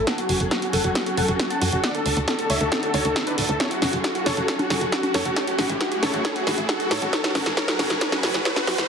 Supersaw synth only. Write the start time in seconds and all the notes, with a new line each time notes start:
0.07 A4 F#5
0.18 F#4
0.29 F#4
0.51 F#4
0.62 F#4
0.73 A4 F#5
0.84 F#4
0.95 F#4
1.06 F#4
1.17 A4 F#5
1.28 F#4
1.39 F#4
1.50 F#5 A5
1.62 F#4
1.73 F#4
1.84 D5 F#5
1.95 A4
2.06 A4
2.28 A4
2.39 A4
2.50 C#5 E5
2.61 A4
2.72 A4
2.83 A4
2.94 A4 C#5
3.05 A4
3.27 D4 B4
3.38 A4
3.49 A4
3.60 A4 C#5
3.71 F#4
3.82 F#4
4.04 F#4
4.15 F#4
4.26 A4 C#5
4.37 F#4
4.48 A4 C#5
4.59 F#4
4.70 F#4
4.92 F#4
5.03 F#4
5.14 A4 C#5
5.26 F#4
5.37 A4 C#5
5.47 F#4
5.58 F#4
5.80 F#4
5.92 F#4
6.03 A4 C#5
6.14 F#4
6.25 A4 C#5
6.36 F#4
6.47 F#4
6.69 F#4
6.80 F#4
6.91 A4 C#5
7.02 F#4
7.13 A4 C#5
7.24 F#4
7.35 F#4
7.57 A4 C#5
7.68 F#4
7.79 F#4
8.01 A4 C#5
8.12 F#4
8.23 F#4
8.45 A4 C#5
8.56 F#4
8.68 F#4